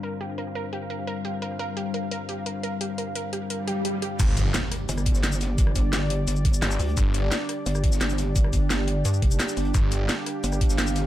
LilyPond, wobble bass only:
\new Staff \with { instrumentName = "Wobble bass" } { \clef bass \time 4/4 \key g \minor \tempo 4 = 173 r1 | r1 | r1 | r2 g,,4 g,,4~ |
g,,8 g,,4. g,,4 r8 d,8 | r2 g,,4 g,,4~ | g,,8 g,,4. g,8 f,,8 r8 g,,8 | r2 g,,4 g,,4 | }